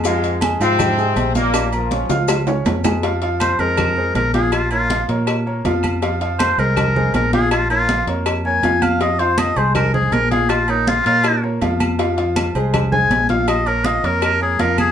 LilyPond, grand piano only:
\new Staff \with { instrumentName = "Grand piano" } { \time 4/4 \key f \minor \tempo 4 = 161 <f f' f''>4 <aes aes' aes''>8 <f f' f''>4 <aes aes' aes''>4 <f' f'' f'''>8~ | <f' f'' f'''>8 <bes bes' bes''>8 <des' des'' des'''>8 <f' f'' f'''>4 <des' des'' des'''>4 <aes aes' aes''>8 | <f f' f''>8 <f f' f''>4 <aes aes' c''>4 <aes aes' c''>4 <f f' f''>8~ | <f f' f''>8 <bes bes' des''>8 <f f' f''>8 <bes bes' des''>4 <bes bes' des''>8 <f f' f''>4 |
<f f' f''>8 <f f' f''>4 <aes aes' c''>4 <aes aes' c''>4 <f f' f''>8~ | <f f' f''>8 <bes bes' des''>8 <f f' f''>8 <bes bes' des''>4 <bes bes' des''>8 <f f' f''>4 | <f f' f''>8 <f f' f''>4 <aes aes' c''>4 <aes aes' c''>4 <f f' f''>8~ | <f f' f''>8 <bes bes' des''>8 <f f' f''>8 <bes bes' des''>4 <bes bes' des''>8 <f f' f''>4 |
<f f' f''>8 <f f' f''>4 <aes aes' c''>4 <aes aes' c''>4 <f f' f''>8~ | <f f' f''>8 <bes bes' des''>8 <f f' f''>8 <bes bes' des''>4 <bes bes' des''>8 <f f' f''>4 | }